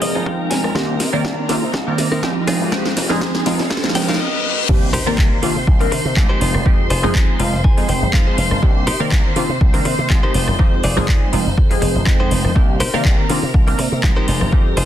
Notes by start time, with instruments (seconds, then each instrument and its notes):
Already playing: analog polysynth F3 G#3 C4 D#4 G#4, string machine A#4 A#5, riser
0.02 slap bass F1, clean electric guitar D#5, open hi-hat
0.15 slap bass F1, clean electric guitar D#4 F4 G#4
0.26 slap bass F2, analog polysynth F3 G#3 C4 D#4 G5, clean electric guitar F5, kick
0.50 slap bass F1, clean electric guitar G#5, muted clean electric guitar stroke, snare, open hi-hat
0.64 slap bass F1, muted clean electric guitar stroke, cross-stick
0.75 slap bass C2, analog polysynth D#3 A#3 C4 D4 G4, clean electric guitar C4 D#4 A#4, kick, snare
1.00 slap bass C3, snare, open hi-hat
1.13 slap bass C3, analog polysynth D#3 A#3 C4 A#4 D5
1.25 slap bass C2, kick, snare
1.49 slap bass C3, analog polysynth D#3 A#3 C4 D4 F4, muted clean electric guitar stroke, snare, open hi-hat
1.63 slap bass C3
1.74 slap bass C2, muted clean electric guitar stroke, kick, snare
1.87 analog polysynth D#3 A#3 C4 A#4 D5, muted clean electric guitar stroke
1.98 slap bass C3, snare, open hi-hat
2.12 slap bass C3, clean electric guitar C4 D#4 A#4
2.23 slap bass C2, analog polysynth F3 G#3 C4 D#4 G4, kick, snare
2.47 slap bass F1, clean electric guitar D#4 F4 G#4, snare, open hi-hat
2.61 slap bass F1
2.72 analog polysynth F3 G#3 C4 D#4 G4, kick, snare
2.86 snare
2.97 slap bass F1, snare, open hi-hat
3.09 slap bass F1, analog polysynth F3 G#3 C4 D#4 G#4, snare
3.21 slap bass F2, kick, snare
3.35 snare
3.46 slap bass F1, analog polysynth F3 G#3 C4 D#4 F4, muted clean electric guitar stroke, snare, open hi-hat
3.59 slap bass F1, snare
3.70 slap bass F2, muted clean electric guitar stroke, kick, snare, reverse cymbal
3.77 snare
3.84 analog polysynth F3 G#3 C4 D#4, muted clean electric guitar stroke, snare
3.89 snare
3.95 slap bass F1, clean electric guitar G5, snare, open hi-hat
4.02 snare
4.08 slap bass F1, clean electric guitar D#4 F4 A#4 F5, snare
4.14 snare
4.20 clean electric guitar D#5
4.69 slap bass C2, analog polysynth D#3 A#3 C4 D4 G4, string machine C5 C6, kick, crash, impact
4.93 slap bass C3, clean electric guitar D#4 G4 A#4 C5, open hi-hat
5.06 slap bass C3, analog polysynth D#3 A#3 C4 A#4 D5, cross-stick
5.18 slap bass C2, kick, clap
5.42 slap bass C3, analog polysynth D#3 A#3 C4 D4 F4, open hi-hat
5.56 slap bass C3
5.67 slap bass C2, kick
5.80 analog polysynth D#3 A#3 C4 D4 A#4, muted clean electric guitar stroke, open hi-hat
5.92 slap bass C3, muted clean electric guitar stroke, open hi-hat
6.05 slap bass C3, muted clean electric guitar stroke
6.16 slap bass C2, analog polysynth F3 G#3 C4 D#4 G4, kick, clap
6.29 clean electric guitar D#4 G4 A#4 C5
6.41 slap bass F1, clean electric guitar D#4 F4 G#4 C5, open hi-hat
6.55 slap bass F1, cross-stick
6.65 slap bass F2, analog polysynth F3 G#3 C4 D#4 G4, kick
6.90 slap bass F1, clean electric guitar D#4 F4 G#4 C5, open hi-hat
7.03 slap bass F1, analog polysynth F3 G#3 C4 D#4 G#4, cross-stick
7.15 slap bass F2, kick, clap
7.39 slap bass F1, analog polysynth F3 G#3 C4 D#4 F4, clean electric guitar F5, open hi-hat
7.53 slap bass F1
7.64 slap bass F2, clean electric guitar G#5, kick
7.77 analog polysynth F3 G#3 C4 D#4 G#4, muted clean electric guitar stroke, open hi-hat
7.89 slap bass F1, clean electric guitar G5, muted clean electric guitar stroke, open hi-hat
8.02 slap bass F1, muted clean electric guitar stroke
8.13 slap bass F2, analog polysynth F3 G#3 C4 D#4, clean electric guitar F5, kick, clap
8.27 clean electric guitar D#4 F4 G#4 C5
8.38 slap bass F1, clean electric guitar F5, open hi-hat
8.51 slap bass F1, cross-stick
8.62 slap bass C2, analog polysynth D#3 A#3 C4 D4 G4, kick
8.87 slap bass C3, clean electric guitar D#4 G4 A#4 C5, open hi-hat
9.00 slap bass C3, analog polysynth D#3 A#3 C4 A#4 D5, cross-stick
9.12 slap bass C2, kick, clap
9.36 slap bass C3, analog polysynth D#3 A#3 C4 D4 F4, open hi-hat
9.49 slap bass C3
9.61 slap bass C2, kick
9.73 analog polysynth D#3 A#3 C4 D4 A#4, muted clean electric guitar stroke, open hi-hat
9.85 slap bass C3, muted clean electric guitar stroke, open hi-hat
9.99 slap bass C3, muted clean electric guitar stroke
10.09 slap bass C2, analog polysynth F3 G#3 C4 D#4 G4, kick, clap
10.23 clean electric guitar D#4 G4 A#4 C5
10.34 slap bass F1, clean electric guitar D#4 F4 G#4 C5, open hi-hat
10.48 slap bass F1, cross-stick
10.59 slap bass F2, analog polysynth F3 G#3 C4 D#4 G4, kick
10.84 slap bass F1, clean electric guitar D#4 F4 G#4 D5, open hi-hat
10.96 slap bass F1, analog polysynth F3 G#3 C4 D#4 G#4, cross-stick
11.08 slap bass F2, kick, clap
11.32 slap bass F1, analog polysynth F3 G#3 C4 D#4 F4, open hi-hat
11.46 slap bass F1
11.57 slap bass F2, kick
11.70 analog polysynth F3 G#3 C4 D#4 G#4, muted clean electric guitar stroke, open hi-hat
11.82 slap bass F1, muted clean electric guitar stroke, open hi-hat
11.95 slap bass F1, muted clean electric guitar stroke
12.06 slap bass F2, analog polysynth F3 G#3 C4 D#4 G5, kick, clap
12.20 clean electric guitar D#4 F4 G#4 C5
12.31 slap bass F1, open hi-hat
12.45 slap bass F1, cross-stick
12.55 slap bass C2, analog polysynth D#3 A#3 C4 D4 G4, string machine A#4 A#5, kick
12.80 slap bass C3, clean electric guitar D#4 G4 A#4 C5, open hi-hat
12.93 slap bass C3, analog polysynth D#3 A#3 C4 A#4 D5, cross-stick
13.05 slap bass C2, kick, clap
13.29 slap bass C3, analog polysynth D#3 A#3 C4 D4 F4, open hi-hat
13.43 slap bass C3
13.54 slap bass C2, kick
13.67 analog polysynth D#3 A#3 C4 D4 A#4, muted clean electric guitar stroke, open hi-hat
13.79 slap bass C3, muted clean electric guitar stroke, open hi-hat
13.92 slap bass C3, muted clean electric guitar stroke
14.03 slap bass C2, analog polysynth F3 G#3 C4 D#4 G4, kick, clap
14.16 clean electric guitar D#4 G4 A#4 C5
14.28 slap bass F1, clean electric guitar D#4 F4 G#4 C5, open hi-hat
14.41 slap bass F1, cross-stick
14.52 slap bass F2, analog polysynth F3 G#3 C4 D#4 G4, kick
14.77 slap bass F1, clean electric guitar D#4 F4 G#4 C5, open hi-hat